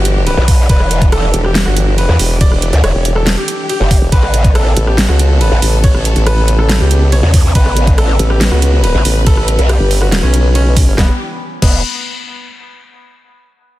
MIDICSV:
0, 0, Header, 1, 6, 480
1, 0, Start_track
1, 0, Tempo, 428571
1, 777, Time_signature, 4, 2, 24, 8
1, 15447, End_track
2, 0, Start_track
2, 0, Title_t, "Grand piano"
2, 0, Program_c, 0, 0
2, 0, Note_on_c, 0, 66, 96
2, 225, Note_off_c, 0, 66, 0
2, 297, Note_on_c, 0, 71, 99
2, 681, Note_off_c, 0, 71, 0
2, 778, Note_on_c, 0, 71, 104
2, 1161, Note_off_c, 0, 71, 0
2, 1257, Note_on_c, 0, 69, 99
2, 1545, Note_off_c, 0, 69, 0
2, 1617, Note_on_c, 0, 67, 93
2, 1809, Note_off_c, 0, 67, 0
2, 1857, Note_on_c, 0, 66, 101
2, 2145, Note_off_c, 0, 66, 0
2, 2218, Note_on_c, 0, 71, 99
2, 2602, Note_off_c, 0, 71, 0
2, 2698, Note_on_c, 0, 74, 99
2, 3081, Note_off_c, 0, 74, 0
2, 3178, Note_on_c, 0, 73, 95
2, 3466, Note_off_c, 0, 73, 0
2, 3537, Note_on_c, 0, 69, 90
2, 3729, Note_off_c, 0, 69, 0
2, 3778, Note_on_c, 0, 67, 97
2, 4065, Note_off_c, 0, 67, 0
2, 4137, Note_on_c, 0, 67, 99
2, 4521, Note_off_c, 0, 67, 0
2, 4617, Note_on_c, 0, 71, 101
2, 5001, Note_off_c, 0, 71, 0
2, 5097, Note_on_c, 0, 69, 99
2, 5385, Note_off_c, 0, 69, 0
2, 5458, Note_on_c, 0, 67, 94
2, 5649, Note_off_c, 0, 67, 0
2, 5698, Note_on_c, 0, 66, 97
2, 5985, Note_off_c, 0, 66, 0
2, 6057, Note_on_c, 0, 71, 95
2, 6441, Note_off_c, 0, 71, 0
2, 6538, Note_on_c, 0, 73, 102
2, 6921, Note_off_c, 0, 73, 0
2, 7018, Note_on_c, 0, 71, 99
2, 7305, Note_off_c, 0, 71, 0
2, 7378, Note_on_c, 0, 69, 89
2, 7570, Note_off_c, 0, 69, 0
2, 7618, Note_on_c, 0, 67, 98
2, 7905, Note_off_c, 0, 67, 0
2, 7978, Note_on_c, 0, 73, 99
2, 8361, Note_off_c, 0, 73, 0
2, 8457, Note_on_c, 0, 71, 105
2, 8841, Note_off_c, 0, 71, 0
2, 8936, Note_on_c, 0, 69, 102
2, 9225, Note_off_c, 0, 69, 0
2, 9296, Note_on_c, 0, 67, 93
2, 9489, Note_off_c, 0, 67, 0
2, 9537, Note_on_c, 0, 66, 97
2, 9825, Note_off_c, 0, 66, 0
2, 9896, Note_on_c, 0, 71, 97
2, 10281, Note_off_c, 0, 71, 0
2, 10378, Note_on_c, 0, 69, 102
2, 10761, Note_off_c, 0, 69, 0
2, 10856, Note_on_c, 0, 67, 97
2, 11145, Note_off_c, 0, 67, 0
2, 11217, Note_on_c, 0, 66, 91
2, 11409, Note_off_c, 0, 66, 0
2, 11458, Note_on_c, 0, 61, 96
2, 11745, Note_off_c, 0, 61, 0
2, 11817, Note_on_c, 0, 61, 95
2, 12201, Note_off_c, 0, 61, 0
2, 12297, Note_on_c, 0, 59, 94
2, 12431, Note_off_c, 0, 59, 0
2, 13016, Note_on_c, 0, 59, 95
2, 13196, Note_off_c, 0, 59, 0
2, 15447, End_track
3, 0, Start_track
3, 0, Title_t, "String section"
3, 0, Program_c, 1, 48
3, 0, Note_on_c, 1, 52, 84
3, 0, Note_on_c, 1, 62, 77
3, 0, Note_on_c, 1, 67, 96
3, 4572, Note_off_c, 1, 52, 0
3, 4572, Note_off_c, 1, 62, 0
3, 4573, Note_off_c, 1, 67, 0
3, 4618, Note_on_c, 1, 49, 82
3, 4618, Note_on_c, 1, 59, 77
3, 4618, Note_on_c, 1, 69, 93
3, 8419, Note_off_c, 1, 69, 0
3, 8457, Note_on_c, 1, 71, 99
3, 12253, Note_off_c, 1, 49, 0
3, 12253, Note_off_c, 1, 59, 0
3, 12259, Note_off_c, 1, 71, 0
3, 12297, Note_on_c, 1, 52, 71
3, 12297, Note_on_c, 1, 62, 65
3, 12298, Note_on_c, 1, 67, 80
3, 12520, Note_off_c, 1, 52, 0
3, 12520, Note_off_c, 1, 62, 0
3, 12521, Note_off_c, 1, 67, 0
3, 15447, End_track
4, 0, Start_track
4, 0, Title_t, "Wobble bass"
4, 0, Program_c, 2, 39
4, 0, Note_on_c, 2, 31, 99
4, 398, Note_off_c, 2, 31, 0
4, 1498, Note_on_c, 2, 28, 95
4, 1839, Note_off_c, 2, 28, 0
4, 1858, Note_on_c, 2, 31, 100
4, 2319, Note_off_c, 2, 31, 0
4, 2458, Note_on_c, 2, 28, 99
4, 2799, Note_off_c, 2, 28, 0
4, 2818, Note_on_c, 2, 28, 103
4, 3039, Note_off_c, 2, 28, 0
4, 3298, Note_on_c, 2, 28, 106
4, 3759, Note_off_c, 2, 28, 0
4, 4499, Note_on_c, 2, 28, 109
4, 4599, Note_off_c, 2, 28, 0
4, 5337, Note_on_c, 2, 33, 96
4, 5678, Note_off_c, 2, 33, 0
4, 5698, Note_on_c, 2, 37, 102
4, 6159, Note_off_c, 2, 37, 0
4, 6298, Note_on_c, 2, 33, 98
4, 6639, Note_off_c, 2, 33, 0
4, 6658, Note_on_c, 2, 33, 98
4, 6879, Note_off_c, 2, 33, 0
4, 6899, Note_on_c, 2, 33, 95
4, 7599, Note_off_c, 2, 33, 0
4, 7618, Note_on_c, 2, 37, 100
4, 8079, Note_off_c, 2, 37, 0
4, 9177, Note_on_c, 2, 33, 99
4, 9518, Note_off_c, 2, 33, 0
4, 9538, Note_on_c, 2, 37, 98
4, 9998, Note_off_c, 2, 37, 0
4, 10138, Note_on_c, 2, 33, 96
4, 10479, Note_off_c, 2, 33, 0
4, 10497, Note_on_c, 2, 33, 99
4, 10718, Note_off_c, 2, 33, 0
4, 10977, Note_on_c, 2, 31, 103
4, 11438, Note_off_c, 2, 31, 0
4, 11457, Note_on_c, 2, 35, 99
4, 12158, Note_off_c, 2, 35, 0
4, 12178, Note_on_c, 2, 31, 104
4, 12278, Note_off_c, 2, 31, 0
4, 15447, End_track
5, 0, Start_track
5, 0, Title_t, "Wobble bass"
5, 0, Program_c, 3, 39
5, 417, Note_on_c, 3, 35, 99
5, 758, Note_off_c, 3, 35, 0
5, 777, Note_on_c, 3, 28, 101
5, 1478, Note_off_c, 3, 28, 0
5, 2338, Note_on_c, 3, 40, 99
5, 2438, Note_off_c, 3, 40, 0
5, 3058, Note_on_c, 3, 38, 99
5, 3158, Note_off_c, 3, 38, 0
5, 3177, Note_on_c, 3, 28, 102
5, 3278, Note_off_c, 3, 28, 0
5, 4258, Note_on_c, 3, 30, 94
5, 4478, Note_off_c, 3, 30, 0
5, 4617, Note_on_c, 3, 33, 97
5, 5318, Note_off_c, 3, 33, 0
5, 6177, Note_on_c, 3, 33, 98
5, 6278, Note_off_c, 3, 33, 0
5, 8097, Note_on_c, 3, 40, 96
5, 8438, Note_off_c, 3, 40, 0
5, 8457, Note_on_c, 3, 33, 95
5, 9158, Note_off_c, 3, 33, 0
5, 10017, Note_on_c, 3, 33, 96
5, 10118, Note_off_c, 3, 33, 0
5, 10738, Note_on_c, 3, 35, 102
5, 10958, Note_off_c, 3, 35, 0
5, 12297, Note_on_c, 3, 28, 100
5, 12431, Note_off_c, 3, 28, 0
5, 13017, Note_on_c, 3, 28, 97
5, 13240, Note_off_c, 3, 28, 0
5, 15447, End_track
6, 0, Start_track
6, 0, Title_t, "Drums"
6, 58, Note_on_c, 9, 42, 86
6, 170, Note_off_c, 9, 42, 0
6, 298, Note_on_c, 9, 51, 42
6, 410, Note_off_c, 9, 51, 0
6, 537, Note_on_c, 9, 36, 115
6, 537, Note_on_c, 9, 46, 99
6, 649, Note_off_c, 9, 36, 0
6, 649, Note_off_c, 9, 46, 0
6, 777, Note_on_c, 9, 36, 127
6, 778, Note_on_c, 9, 51, 61
6, 889, Note_off_c, 9, 36, 0
6, 890, Note_off_c, 9, 51, 0
6, 898, Note_on_c, 9, 37, 55
6, 1010, Note_off_c, 9, 37, 0
6, 1018, Note_on_c, 9, 42, 85
6, 1130, Note_off_c, 9, 42, 0
6, 1138, Note_on_c, 9, 36, 114
6, 1138, Note_on_c, 9, 42, 38
6, 1250, Note_off_c, 9, 36, 0
6, 1250, Note_off_c, 9, 42, 0
6, 1258, Note_on_c, 9, 37, 83
6, 1258, Note_on_c, 9, 51, 45
6, 1370, Note_off_c, 9, 37, 0
6, 1370, Note_off_c, 9, 51, 0
6, 1498, Note_on_c, 9, 42, 82
6, 1610, Note_off_c, 9, 42, 0
6, 1618, Note_on_c, 9, 37, 50
6, 1730, Note_off_c, 9, 37, 0
6, 1737, Note_on_c, 9, 38, 125
6, 1737, Note_on_c, 9, 51, 62
6, 1849, Note_off_c, 9, 38, 0
6, 1849, Note_off_c, 9, 51, 0
6, 1858, Note_on_c, 9, 37, 53
6, 1970, Note_off_c, 9, 37, 0
6, 1977, Note_on_c, 9, 42, 84
6, 2089, Note_off_c, 9, 42, 0
6, 2217, Note_on_c, 9, 51, 44
6, 2329, Note_off_c, 9, 51, 0
6, 2457, Note_on_c, 9, 46, 90
6, 2569, Note_off_c, 9, 46, 0
6, 2697, Note_on_c, 9, 36, 127
6, 2697, Note_on_c, 9, 51, 65
6, 2809, Note_off_c, 9, 36, 0
6, 2809, Note_off_c, 9, 51, 0
6, 2818, Note_on_c, 9, 37, 53
6, 2930, Note_off_c, 9, 37, 0
6, 2937, Note_on_c, 9, 42, 77
6, 3049, Note_off_c, 9, 42, 0
6, 3058, Note_on_c, 9, 42, 37
6, 3170, Note_off_c, 9, 42, 0
6, 3178, Note_on_c, 9, 37, 85
6, 3178, Note_on_c, 9, 51, 46
6, 3290, Note_off_c, 9, 37, 0
6, 3290, Note_off_c, 9, 51, 0
6, 3417, Note_on_c, 9, 42, 78
6, 3529, Note_off_c, 9, 42, 0
6, 3538, Note_on_c, 9, 37, 50
6, 3650, Note_off_c, 9, 37, 0
6, 3657, Note_on_c, 9, 38, 127
6, 3657, Note_on_c, 9, 51, 63
6, 3769, Note_off_c, 9, 38, 0
6, 3769, Note_off_c, 9, 51, 0
6, 3898, Note_on_c, 9, 42, 79
6, 4010, Note_off_c, 9, 42, 0
6, 4138, Note_on_c, 9, 51, 45
6, 4250, Note_off_c, 9, 51, 0
6, 4377, Note_on_c, 9, 36, 116
6, 4378, Note_on_c, 9, 46, 89
6, 4489, Note_off_c, 9, 36, 0
6, 4490, Note_off_c, 9, 46, 0
6, 4617, Note_on_c, 9, 36, 121
6, 4618, Note_on_c, 9, 51, 62
6, 4729, Note_off_c, 9, 36, 0
6, 4730, Note_off_c, 9, 51, 0
6, 4738, Note_on_c, 9, 37, 58
6, 4850, Note_off_c, 9, 37, 0
6, 4858, Note_on_c, 9, 42, 73
6, 4970, Note_off_c, 9, 42, 0
6, 4978, Note_on_c, 9, 36, 116
6, 4978, Note_on_c, 9, 42, 36
6, 5090, Note_off_c, 9, 36, 0
6, 5090, Note_off_c, 9, 42, 0
6, 5097, Note_on_c, 9, 37, 86
6, 5097, Note_on_c, 9, 51, 48
6, 5209, Note_off_c, 9, 37, 0
6, 5209, Note_off_c, 9, 51, 0
6, 5338, Note_on_c, 9, 42, 78
6, 5450, Note_off_c, 9, 42, 0
6, 5458, Note_on_c, 9, 37, 52
6, 5570, Note_off_c, 9, 37, 0
6, 5577, Note_on_c, 9, 38, 120
6, 5577, Note_on_c, 9, 51, 64
6, 5689, Note_off_c, 9, 38, 0
6, 5689, Note_off_c, 9, 51, 0
6, 5698, Note_on_c, 9, 37, 58
6, 5810, Note_off_c, 9, 37, 0
6, 5818, Note_on_c, 9, 42, 78
6, 5930, Note_off_c, 9, 42, 0
6, 6058, Note_on_c, 9, 51, 45
6, 6170, Note_off_c, 9, 51, 0
6, 6298, Note_on_c, 9, 46, 92
6, 6410, Note_off_c, 9, 46, 0
6, 6537, Note_on_c, 9, 36, 121
6, 6538, Note_on_c, 9, 51, 66
6, 6649, Note_off_c, 9, 36, 0
6, 6650, Note_off_c, 9, 51, 0
6, 6658, Note_on_c, 9, 37, 58
6, 6770, Note_off_c, 9, 37, 0
6, 6778, Note_on_c, 9, 42, 77
6, 6890, Note_off_c, 9, 42, 0
6, 6898, Note_on_c, 9, 42, 35
6, 7010, Note_off_c, 9, 42, 0
6, 7017, Note_on_c, 9, 37, 91
6, 7017, Note_on_c, 9, 51, 50
6, 7129, Note_off_c, 9, 37, 0
6, 7129, Note_off_c, 9, 51, 0
6, 7258, Note_on_c, 9, 42, 73
6, 7370, Note_off_c, 9, 42, 0
6, 7378, Note_on_c, 9, 37, 57
6, 7490, Note_off_c, 9, 37, 0
6, 7498, Note_on_c, 9, 38, 119
6, 7498, Note_on_c, 9, 51, 68
6, 7610, Note_off_c, 9, 38, 0
6, 7610, Note_off_c, 9, 51, 0
6, 7738, Note_on_c, 9, 42, 79
6, 7850, Note_off_c, 9, 42, 0
6, 7978, Note_on_c, 9, 51, 48
6, 8090, Note_off_c, 9, 51, 0
6, 8217, Note_on_c, 9, 36, 110
6, 8218, Note_on_c, 9, 46, 94
6, 8329, Note_off_c, 9, 36, 0
6, 8330, Note_off_c, 9, 46, 0
6, 8457, Note_on_c, 9, 36, 117
6, 8458, Note_on_c, 9, 51, 70
6, 8569, Note_off_c, 9, 36, 0
6, 8570, Note_off_c, 9, 51, 0
6, 8578, Note_on_c, 9, 37, 57
6, 8690, Note_off_c, 9, 37, 0
6, 8697, Note_on_c, 9, 42, 78
6, 8809, Note_off_c, 9, 42, 0
6, 8818, Note_on_c, 9, 36, 107
6, 8818, Note_on_c, 9, 42, 35
6, 8930, Note_off_c, 9, 36, 0
6, 8930, Note_off_c, 9, 42, 0
6, 8937, Note_on_c, 9, 37, 85
6, 8937, Note_on_c, 9, 51, 50
6, 9049, Note_off_c, 9, 37, 0
6, 9049, Note_off_c, 9, 51, 0
6, 9177, Note_on_c, 9, 42, 80
6, 9289, Note_off_c, 9, 42, 0
6, 9298, Note_on_c, 9, 37, 56
6, 9410, Note_off_c, 9, 37, 0
6, 9417, Note_on_c, 9, 38, 110
6, 9417, Note_on_c, 9, 51, 69
6, 9529, Note_off_c, 9, 38, 0
6, 9529, Note_off_c, 9, 51, 0
6, 9538, Note_on_c, 9, 37, 57
6, 9650, Note_off_c, 9, 37, 0
6, 9657, Note_on_c, 9, 42, 80
6, 9769, Note_off_c, 9, 42, 0
6, 9897, Note_on_c, 9, 51, 47
6, 10009, Note_off_c, 9, 51, 0
6, 10137, Note_on_c, 9, 46, 99
6, 10249, Note_off_c, 9, 46, 0
6, 10377, Note_on_c, 9, 36, 112
6, 10377, Note_on_c, 9, 51, 69
6, 10489, Note_off_c, 9, 36, 0
6, 10489, Note_off_c, 9, 51, 0
6, 10498, Note_on_c, 9, 37, 54
6, 10610, Note_off_c, 9, 37, 0
6, 10617, Note_on_c, 9, 42, 82
6, 10729, Note_off_c, 9, 42, 0
6, 10738, Note_on_c, 9, 42, 37
6, 10850, Note_off_c, 9, 42, 0
6, 10857, Note_on_c, 9, 37, 82
6, 10857, Note_on_c, 9, 51, 50
6, 10969, Note_off_c, 9, 37, 0
6, 10969, Note_off_c, 9, 51, 0
6, 11097, Note_on_c, 9, 46, 66
6, 11209, Note_off_c, 9, 46, 0
6, 11218, Note_on_c, 9, 37, 52
6, 11330, Note_off_c, 9, 37, 0
6, 11337, Note_on_c, 9, 38, 110
6, 11337, Note_on_c, 9, 51, 69
6, 11449, Note_off_c, 9, 38, 0
6, 11449, Note_off_c, 9, 51, 0
6, 11577, Note_on_c, 9, 42, 82
6, 11689, Note_off_c, 9, 42, 0
6, 11817, Note_on_c, 9, 51, 49
6, 11929, Note_off_c, 9, 51, 0
6, 12057, Note_on_c, 9, 36, 109
6, 12057, Note_on_c, 9, 46, 94
6, 12169, Note_off_c, 9, 36, 0
6, 12169, Note_off_c, 9, 46, 0
6, 12297, Note_on_c, 9, 36, 116
6, 12297, Note_on_c, 9, 38, 85
6, 12409, Note_off_c, 9, 36, 0
6, 12409, Note_off_c, 9, 38, 0
6, 13017, Note_on_c, 9, 36, 108
6, 13017, Note_on_c, 9, 49, 87
6, 13129, Note_off_c, 9, 36, 0
6, 13129, Note_off_c, 9, 49, 0
6, 15447, End_track
0, 0, End_of_file